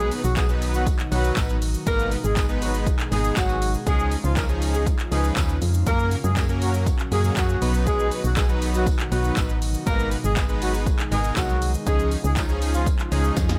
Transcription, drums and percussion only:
0.11 open hi-hat, tambourine, shaker
0.24 tambourine, shaker
0.37 kick, clap, closed hi-hat, tambourine, shaker
0.49 shaker
0.62 open hi-hat, tambourine, shaker
0.74 tambourine, shaker
0.86 kick, closed hi-hat, tambourine, shaker
0.99 clap, shaker
1.12 open hi-hat, tambourine, shaker
1.24 tambourine, shaker
1.37 kick, clap, closed hi-hat, tambourine, shaker
1.49 tambourine, shaker
1.62 open hi-hat, tambourine, shaker
1.74 shaker
1.87 kick, closed hi-hat, tambourine, shaker
1.99 shaker
2.11 open hi-hat, tambourine, shaker
2.24 shaker
2.37 kick, clap, closed hi-hat, tambourine, shaker
2.49 shaker
2.62 open hi-hat, tambourine, shaker
2.74 shaker
2.87 kick, closed hi-hat, tambourine, shaker
2.99 clap, shaker
3.12 open hi-hat, tambourine, shaker
3.24 shaker
3.37 kick, clap, closed hi-hat, tambourine, shaker
3.49 tambourine, shaker
3.62 open hi-hat, tambourine, shaker
3.74 shaker
3.87 kick, closed hi-hat, tambourine, shaker
3.99 shaker
4.11 open hi-hat, tambourine, shaker
4.24 shaker
4.37 kick, clap, closed hi-hat, tambourine, shaker
4.49 shaker
4.62 open hi-hat, tambourine, shaker
4.74 shaker
4.86 kick, closed hi-hat, tambourine, shaker
4.99 clap, shaker
5.12 open hi-hat, tambourine, shaker
5.24 tambourine, shaker
5.36 kick, clap, closed hi-hat, tambourine, shaker
5.49 tambourine, shaker
5.62 open hi-hat, tambourine, shaker
5.74 shaker
5.87 kick, closed hi-hat, tambourine, shaker
5.99 shaker
6.11 open hi-hat, tambourine, shaker
6.24 shaker
6.36 kick, clap, closed hi-hat, tambourine, shaker
6.49 shaker
6.62 open hi-hat, tambourine, shaker
6.74 tambourine, shaker
6.86 kick, closed hi-hat, tambourine, shaker
6.99 clap, shaker
7.12 open hi-hat, tambourine, shaker
7.24 tambourine, shaker
7.37 kick, clap, closed hi-hat, tambourine, shaker
7.49 shaker
7.62 open hi-hat, tambourine, shaker
7.74 shaker
7.87 kick, closed hi-hat, tambourine, shaker
7.99 shaker
8.11 open hi-hat, tambourine, shaker
8.24 tambourine, shaker
8.37 kick, clap, closed hi-hat, tambourine, shaker
8.49 shaker
8.62 open hi-hat, tambourine, shaker
8.74 tambourine, shaker
8.87 kick, closed hi-hat, tambourine, shaker
8.99 clap, shaker
9.12 open hi-hat, tambourine, shaker
9.24 tambourine, shaker
9.37 kick, clap, closed hi-hat, tambourine, shaker
9.49 shaker
9.62 open hi-hat, tambourine, shaker
9.74 shaker
9.87 kick, closed hi-hat, tambourine, shaker
9.99 shaker
10.11 open hi-hat, tambourine, shaker
10.24 shaker
10.37 kick, clap, closed hi-hat, tambourine, shaker
10.49 shaker
10.62 open hi-hat, tambourine, shaker
10.74 tambourine, shaker
10.86 kick, closed hi-hat, tambourine, shaker
10.99 clap, shaker
11.12 open hi-hat, tambourine, shaker
11.24 tambourine, shaker
11.36 kick, clap, closed hi-hat, tambourine, shaker
11.49 tambourine, shaker
11.62 open hi-hat, tambourine, shaker
11.74 shaker
11.87 kick, closed hi-hat, tambourine, shaker
11.99 shaker
12.11 open hi-hat, tambourine, shaker
12.24 shaker
12.36 kick, clap, closed hi-hat, tambourine, shaker
12.49 shaker
12.62 open hi-hat, tambourine, shaker
12.74 shaker
12.86 kick, closed hi-hat, tambourine, shaker
12.99 clap, shaker
13.12 open hi-hat, tambourine, shaker
13.24 shaker
13.36 kick, snare, closed hi-hat, tambourine, shaker
13.49 snare, tambourine, shaker

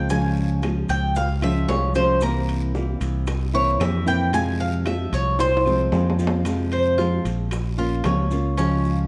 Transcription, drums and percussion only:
0.10 high bongo, high timbale, long guiro, maracas
0.36 high bongo, maracas
0.62 high bongo, high timbale, low timbale, short guiro, claves, maracas
0.89 high bongo, high timbale, short guiro, maracas
1.15 high bongo, long guiro, maracas
1.42 high timbale, claves, maracas
1.69 high bongo, low bongo, low timbale, short guiro, maracas
1.95 high bongo, high timbale, short guiro, maracas
2.21 high bongo, high timbale, long guiro, claves, maracas
2.49 high timbale, maracas
2.75 high bongo, low timbale, short guiro, maracas
3.01 high timbale, short guiro, maracas
3.27 high bongo, high timbale, long guiro, claves, maracas
3.55 maracas
3.80 high bongo, low bongo, high timbale, low timbale, short guiro, claves, maracas
4.07 short guiro, maracas
4.33 high bongo, high timbale, long guiro, maracas
4.60 high bongo, maracas
4.86 high bongo, high timbale, low timbale, short guiro, claves, maracas
5.13 high bongo, high timbale, short guiro, maracas
5.39 high bongo, high timbale, long guiro, maracas
5.57 high timbale
5.66 claves, maracas
5.92 high bongo, low bongo, low timbale, short guiro, maracas
6.10 low timbale
6.19 high bongo, short guiro, maracas
6.27 low timbale
6.45 high bongo, high timbale, long guiro, claves, maracas
6.72 high timbale, maracas
6.98 high bongo, low timbale, short guiro, maracas
7.25 high timbale, short guiro, maracas
7.51 high bongo, high timbale, long guiro, claves, maracas
7.79 maracas
8.04 high bongo, low bongo, high timbale, low timbale, short guiro, claves, maracas
8.30 short guiro, maracas
8.57 high bongo, high timbale, long guiro, maracas
8.85 high bongo, maracas

